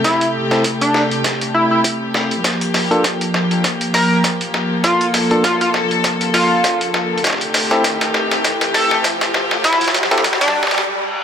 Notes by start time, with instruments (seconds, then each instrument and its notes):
Already playing: string section C3 A3 G4
0.04 analog synth lead E4, kick, snare, closed hi-hat
0.21 closed hi-hat
0.51 tine electric piano C4 E4 G4 A4, snare, closed hi-hat
0.64 kick, closed hi-hat
0.81 analog synth lead D4, closed hi-hat
0.94 snare
1.11 closed hi-hat
1.24 kick, snare, closed hi-hat
1.41 closed hi-hat
1.54 analog synth lead E4
1.71 analog synth lead E4
1.84 kick, closed hi-hat
2.14 snare
2.31 closed hi-hat
2.44 string section F3 A#3, kick, snare, closed hi-hat, riser
2.61 closed hi-hat
2.74 snare, open hi-hat
2.91 tine electric piano A#3 D4 F4 A4, closed hi-hat
3.04 kick, snare, closed hi-hat
3.21 closed hi-hat
3.34 snare
3.51 closed hi-hat
3.64 kick, snare, closed hi-hat
3.81 closed hi-hat
3.94 analog synth lead A#4, snare, open hi-hat
4.24 kick, snare, closed hi-hat
4.41 closed hi-hat
4.54 snare
4.84 analog synth lead F4, string section A4, kick, snare, closed hi-hat
5.01 closed hi-hat
5.14 snare, open hi-hat
5.31 tine electric piano A#3 D4 F4 A4, closed hi-hat
5.44 analog synth lead F4, kick, snare, closed hi-hat
5.61 analog synth lead F4, closed hi-hat
5.74 snare
5.91 closed hi-hat
6.04 kick, snare, closed hi-hat
6.21 closed hi-hat
6.34 analog synth lead F4, snare, open hi-hat
6.64 kick, snare, closed hi-hat
6.81 closed hi-hat
6.94 snare
7.18 closed hi-hat
7.24 string section C3 A3 G4, kick, snare, closed hi-hat
7.27 snare
7.30 snare
7.33 snare
7.38 snare, closed hi-hat
7.54 snare, open hi-hat
7.71 tine electric piano C4 E4 G4 A4, snare, closed hi-hat
7.84 kick, snare, closed hi-hat
8.01 snare, closed hi-hat
8.14 snare
8.31 snare, closed hi-hat
8.44 kick, snare, closed hi-hat
8.61 snare, closed hi-hat
8.74 analog synth lead A4, snare, open hi-hat
8.91 snare
9.04 kick, snare, closed hi-hat
9.21 snare, closed hi-hat
9.34 snare
9.51 snare
9.64 string section G3, analog synth lead E4, kick, snare, closed hi-hat
9.73 snare
9.81 closed hi-hat
9.84 snare, closed hi-hat
9.88 closed hi-hat
9.91 snare, closed hi-hat
9.94 closed hi-hat, open hi-hat
9.99 closed hi-hat
10.03 snare
10.07 closed hi-hat
10.11 tine electric piano C4 E4 G4 A4, snare, closed hi-hat
10.18 snare
10.24 kick, snare, closed hi-hat
10.33 snare
10.41 analog synth lead D4, snare, closed hi-hat
10.48 snare
10.63 snare
10.67 snare
10.71 snare, closed hi-hat
10.75 snare
10.78 snare
10.81 snare, reverse cymbal